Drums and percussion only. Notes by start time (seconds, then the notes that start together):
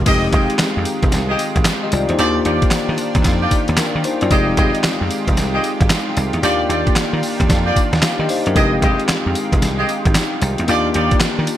0.06 kick, closed hi-hat, crash, tambourine
0.33 kick, closed hi-hat
0.50 closed hi-hat
0.59 snare, clap, closed hi-hat, tambourine
0.85 closed hi-hat, tambourine
1.03 kick, closed hi-hat
1.12 snare, closed hi-hat, tambourine
1.39 closed hi-hat, tambourine
1.56 kick, closed hi-hat
1.65 snare, clap, closed hi-hat, tambourine
1.92 closed hi-hat, tambourine
2.09 closed hi-hat
2.19 closed hi-hat, tambourine
2.45 closed hi-hat
2.62 kick, closed hi-hat
2.71 snare, clap, closed hi-hat, tambourine
2.98 closed hi-hat, tambourine
3.15 kick, closed hi-hat
3.24 kick, snare, closed hi-hat, tambourine
3.51 kick, closed hi-hat, tambourine
3.68 closed hi-hat
3.77 snare, clap, closed hi-hat, tambourine
4.04 closed hi-hat, tambourine
4.21 closed hi-hat
4.31 kick, closed hi-hat, tambourine
4.57 kick, closed hi-hat
4.75 closed hi-hat
4.83 snare, clap, closed hi-hat, tambourine
5.11 closed hi-hat, tambourine
5.27 kick, closed hi-hat
5.37 snare, closed hi-hat, tambourine
5.64 closed hi-hat, tambourine
5.81 kick, closed hi-hat
5.90 snare, clap, closed hi-hat, tambourine
6.17 closed hi-hat, tambourine
6.33 closed hi-hat
6.43 closed hi-hat, tambourine
6.70 closed hi-hat
6.87 kick, closed hi-hat
6.96 snare, clap, closed hi-hat, tambourine
7.23 open hi-hat, tambourine
7.40 kick, closed hi-hat
7.49 kick, snare, closed hi-hat, tambourine
7.76 kick, closed hi-hat, tambourine
7.93 snare, closed hi-hat
8.02 snare, clap, closed hi-hat, tambourine
8.29 open hi-hat, tambourine
8.46 closed hi-hat
8.56 kick, closed hi-hat, tambourine
8.82 kick, closed hi-hat
9.00 closed hi-hat
9.08 snare, clap, closed hi-hat, tambourine
9.35 closed hi-hat, tambourine
9.52 kick, closed hi-hat
9.62 snare, closed hi-hat, tambourine
9.89 closed hi-hat, tambourine
10.05 kick, closed hi-hat
10.15 snare, clap, closed hi-hat, tambourine
10.42 closed hi-hat, tambourine
10.58 closed hi-hat
10.68 closed hi-hat, tambourine
10.94 closed hi-hat
11.11 kick, closed hi-hat
11.20 snare, clap, closed hi-hat, tambourine
11.47 closed hi-hat, tambourine